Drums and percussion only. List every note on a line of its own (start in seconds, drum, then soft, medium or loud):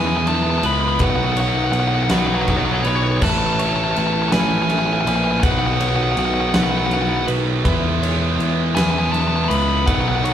0.27 ride medium
0.63 ride medium
0.99 kick loud
0.99 ride loud
1.37 ride medium
1.73 ride medium
2.10 snare loud
2.10 ride loud
2.48 kick medium
2.48 ride medium
2.85 ride medium
3.21 kick loud
3.21 crash loud
3.59 ride medium
3.96 ride medium
4.32 snare loud
4.32 ride loud
4.70 ride medium
5.07 ride medium
5.43 kick loud
5.43 ride loud
5.81 ride medium
6.17 ride medium
6.54 snare loud
6.54 ride loud
6.91 ride medium
7.28 ride medium
7.65 kick loud
7.65 ride loud
8.03 ride medium
8.40 ride medium
8.77 snare loud
8.77 ride loud
9.14 ride medium
9.51 ride medium
9.88 kick loud
9.88 ride loud
10.25 ride medium